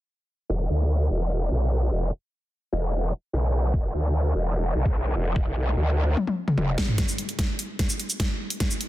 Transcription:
0.49 wobble bass E1
0.70 wobble bass D2
1.10 wobble bass E1
1.51 wobble bass B1
1.91 wobble bass E1
2.72 wobble bass E1
3.33 wobble bass B1
3.74 wobble bass E1, kick
3.94 wobble bass D2
4.35 wobble bass E1
4.75 wobble bass B1
4.86 kick
5.16 wobble bass E1
5.36 wobble bass E1, kick
5.46 wobble bass B1
5.56 wobble bass B1
5.77 wobble bass D2
6.17 high tom
6.27 high tom
6.48 mid tom
6.58 wobble bass E1, mid tom
6.78 kick, snare
6.88 mid tom
6.98 kick, snare, closed hi-hat
7.08 shaker
7.18 closed hi-hat
7.29 closed hi-hat
7.39 kick, snare, closed hi-hat
7.59 closed hi-hat
7.79 kick, snare, closed hi-hat
7.90 shaker
8.00 closed hi-hat
8.10 shaker
8.20 kick, snare, closed hi-hat
8.50 closed hi-hat
8.60 kick, snare, closed hi-hat
8.71 shaker
8.81 closed hi-hat

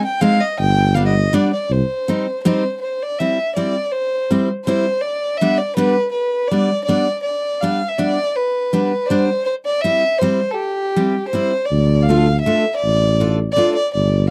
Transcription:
0.04 fiddle G5
0.21 steel-string acoustic guitar G#3 C4 D#4, fiddle F5
0.40 fiddle D#5
0.59 tuba G1, fiddle G5
0.94 steel-string acoustic guitar G3 B3 D4, fiddle F5
1.05 fiddle D#5
1.33 steel-string acoustic guitar G3 B3 D4, fiddle D5
1.53 fiddle D5
1.70 tuba C2, fiddle C5
2.08 steel-string acoustic guitar G3 C4 D#4
2.43 steel-string acoustic guitar G3 C4 D#4, fiddle C5
2.81 fiddle C5
3.02 fiddle D5
3.18 steel-string acoustic guitar G3 C4 E4, fiddle E5
3.55 steel-string acoustic guitar G3 C4 E4, fiddle D5
3.92 fiddle C5
4.31 steel-string acoustic guitar G3 C4 E4
4.64 steel-string acoustic guitar G3 C4, fiddle C5
4.69 steel-string acoustic guitar E4
5.01 fiddle D5
5.37 fiddle E5
5.41 steel-string acoustic guitar G3 B3 D4
5.58 fiddle D5
5.76 steel-string acoustic guitar G3 B3 D4, fiddle B4
6.12 fiddle B4
6.48 steel-string acoustic guitar G3, fiddle D5
6.52 steel-string acoustic guitar B3 D4
6.84 fiddle D5
6.88 steel-string acoustic guitar G3 B3 D4
7.22 fiddle D5
7.61 steel-string acoustic guitar G3 B3 D4, fiddle F5
7.88 fiddle E5
7.98 steel-string acoustic guitar G3 B3 D4, fiddle D5
8.36 fiddle B4
8.73 steel-string acoustic guitar G3 B3 D4
9.06 fiddle C5 D5
9.10 steel-string acoustic guitar G3 B3 D4
9.45 fiddle C5
9.65 fiddle D5
9.81 steel-string acoustic guitar G3 C4 E4, fiddle E5
10.18 steel-string acoustic guitar G3, fiddle C5
10.22 steel-string acoustic guitar C4 E4
10.51 fiddle G4 A4
10.96 steel-string acoustic guitar G3 C4 E4
11.28 fiddle C5
11.33 steel-string acoustic guitar G3 C4 E4
11.65 fiddle D5
11.71 tuba D2
12.03 fiddle F5
12.09 steel-string acoustic guitar A3 D4 F4
12.40 fiddle E5
12.46 steel-string acoustic guitar A3 D4 F4
12.76 fiddle D5
12.83 tuba A1
13.20 steel-string acoustic guitar A3 D4 F4
13.52 fiddle D5
13.56 steel-string acoustic guitar A3 D4 F4
13.75 fiddle D5
13.93 tuba G1, fiddle D5

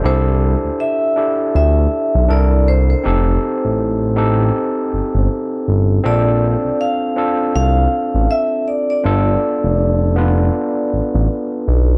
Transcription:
Already playing: tine electric piano C5
0.04 analog synth bass C2, tine electric piano D4 E4 G4 A4, vibraphone C5
0.65 analog synth bass D2
0.80 vibraphone E5
1.16 tine electric piano D4 E4 G4 A4
1.55 analog synth bass D2, vibraphone E5
2.15 analog synth bass B1
2.28 analog synth bass C2, tine electric piano D4 E4 A4 A#4, vibraphone D5
2.68 vibraphone C5
2.90 vibraphone C5
3.04 analog synth bass F1, tine electric piano C4 D#4 G4 A4
3.65 analog synth bass A1
4.16 tine electric piano C4 D#4 G4 A4
4.93 analog synth bass G1
5.15 analog synth bass G1
5.68 analog synth bass G1
6.04 analog synth bass A#1, tine electric piano C4 D4 F4 A4, vibraphone D5
6.65 analog synth bass C2
6.81 vibraphone F5
7.16 tine electric piano C4 D4 F4 A4
7.56 analog synth bass C2, vibraphone F5
8.15 analog synth bass A1
8.31 vibraphone E5
8.68 vibraphone D5
8.90 vibraphone D5
9.04 analog synth bass G1, tine electric piano B3 D4 F4 A4
9.64 analog synth bass F1
10.16 tine electric piano B3 D4 F4 B4
10.93 analog synth bass A1
11.15 analog synth bass A1
11.68 analog synth bass B1

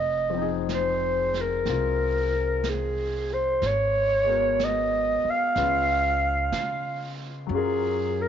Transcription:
Already playing: upright bass F1, clarinet D#5
0.30 grand piano F3
0.34 grand piano C4 D#4
0.42 grand piano G#4
0.69 brush sweep, snare, hi-hat pedal
0.74 clarinet C5
1.34 snare
1.41 clarinet A#4
1.65 upright bass C2, grand piano C4 F4, brush sweep, snare
2.64 brush sweep, snare, hi-hat pedal
2.69 clarinet G#4
3.34 clarinet C5
3.62 upright bass G#1, brush sweep, snare
3.67 clarinet C#5
4.24 grand piano G#3 B3
4.28 grand piano F#4 A#4
4.59 brush sweep, snare, hi-hat pedal
4.65 clarinet D#5
5.25 muted upright bass stroke
5.31 clarinet F5
5.56 upright bass C#2, grand piano G#3 C#4 F4 B4, brush sweep, snare
6.52 upright bass C#3, brush sweep, snare, hi-hat pedal
7.47 upright bass F#2, grand piano F#3 C#4, brush sweep
7.53 grand piano F4, clarinet G#4
7.58 grand piano A#4
8.21 clarinet A#4

